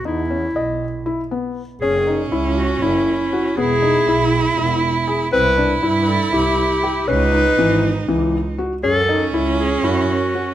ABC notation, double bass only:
X:1
M:7/8
L:1/8
Q:1/4=120
K:F#dor
V:1 name="Double bass" clef=bass
E,,2 B,,,2 z3 | F,,,2 C,,2 F,,, z2 | E,,,2 B,,,2 E,,, z2 | =C,,2 =G,,2 C,, z2 |
C,,2 G,,,2 C,, z2 | F,,2 C,,2 F,, z2 |]